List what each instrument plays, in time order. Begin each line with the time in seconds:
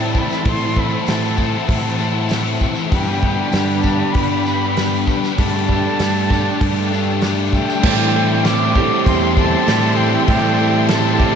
Already playing: fingered electric bass A2, overdriven electric guitar A2 E3 A3 C4 E4, clean electric guitar A2 E3 G3 C4 G4, twelve-string acoustic guitar E3 A3 G4, string section E4 C5 G5 A5, flute A5
0.14 twelve-string acoustic guitar E3, kick, tambourine
0.18 flute B5
0.30 snare, tambourine
0.44 overdriven electric guitar A2 E3 A3 C4 E4, fingered electric bass A2, string section F#5, flute C6, kick, open hi-hat
0.60 tambourine
0.76 overdriven electric guitar A3 C4 E4, flute B5, kick
1.06 fingered electric bass A2, overdriven electric guitar E3 A3 C4 E4, twelve-string acoustic guitar G4, flute A5, snare, open hi-hat, tambourine
1.37 overdriven electric guitar A3 C4 E4, kick, tambourine
1.52 tambourine
1.68 fingered electric bass A2, twelve-string acoustic guitar E3, flute A5, kick, open hi-hat, tambourine
1.99 overdriven electric guitar A3 C4 E4, tambourine
2.29 overdriven electric guitar E3 A3 C4 E4, snare, open hi-hat, tambourine
2.61 twelve-string acoustic guitar E3, kick, tambourine
2.75 tambourine
2.91 clean electric guitar G2 D3 G3 B3 D4 G4, fingered electric bass G2, overdriven electric guitar G3 B3 D4 G4, string section D4 B4 G5 B5, flute G5, kick, open hi-hat
3.06 tambourine
3.22 overdriven electric guitar B3 D4 G4, kick
3.52 fingered electric bass G2, overdriven electric guitar G3 B3 D4 G4, snare, open hi-hat, tambourine
3.81 overdriven electric guitar G4, flute A5, kick, tambourine
3.86 overdriven electric guitar B3 D4
4.00 tambourine
4.13 fingered electric bass G2, twelve-string acoustic guitar B3, flute B5, kick, open hi-hat, tambourine
4.45 overdriven electric guitar B3 D4 G4, tambourine
4.76 overdriven electric guitar G3 B3 D4 G4, snare, open hi-hat, tambourine
5.08 twelve-string acoustic guitar B3, kick, tambourine
5.24 snare, tambourine
5.38 fingered electric bass G2, overdriven electric guitar G3 A3 D4 G4, clean electric guitar G3 A3 D4 G4, string section D4 A4 A5, flute A5, kick, open hi-hat
5.55 tambourine
5.69 overdriven electric guitar A3 D4 G4, kick, tambourine
5.86 tambourine
5.99 fingered electric bass G2, overdriven electric guitar G3 A3 D4 G4, snare, open hi-hat, tambourine
6.17 tambourine
6.30 overdriven electric guitar A3 D4 G4, kick, tambourine
6.49 tambourine
6.61 fingered electric bass G2, twelve-string acoustic guitar A3, kick, open hi-hat
6.78 tambourine
6.92 overdriven electric guitar A3 D4 G4, tambourine
7.10 tambourine
7.22 overdriven electric guitar G3 A3 D4 G4, snare, open hi-hat, tambourine
7.53 twelve-string acoustic guitar A3, flute G5, kick, tambourine
7.70 tambourine
7.83 clean electric guitar A2 E3 G3 C4 G4, fingered electric bass A2, twelve-string acoustic guitar E3, overdriven electric guitar A3 C4 E4 A4, string section A4 E5 G5 C6, kick, crash
8.14 twelve-string acoustic guitar A3, overdriven electric guitar C4 E4 A4
8.45 overdriven electric guitar A3 C4 E4 A4, flute D6, snare, crash
8.75 clean electric guitar A2 E3 G3 C4 G4, twelve-string acoustic guitar G4, kick
9.06 fingered electric bass E2, twelve-string acoustic guitar C4, flute C6, kick, crash
9.37 overdriven electric guitar C4 E4 A4, twelve-string acoustic guitar G4, flute A5, kick
9.67 clean electric guitar A2 E3 G3 C4 G4, fingered electric bass A2, overdriven electric guitar A3 C4 E4 A4, snare, crash
9.97 twelve-string acoustic guitar E3, overdriven electric guitar C4 E4 A4, flute G5
10.27 clean electric guitar A2 E3 G3 C4, fingered electric bass A2, twelve-string acoustic guitar E3, overdriven electric guitar A3 C4 E4 A4, flute G5, string section A5, kick, crash
10.31 clean electric guitar G4
10.59 twelve-string acoustic guitar A3, overdriven electric guitar C4 E4 A4
10.87 overdriven electric guitar A3, flute A5, snare, crash
10.91 overdriven electric guitar C4 E4 A4
11.19 clean electric guitar A2 E3 G3 C4 G4, twelve-string acoustic guitar G4, kick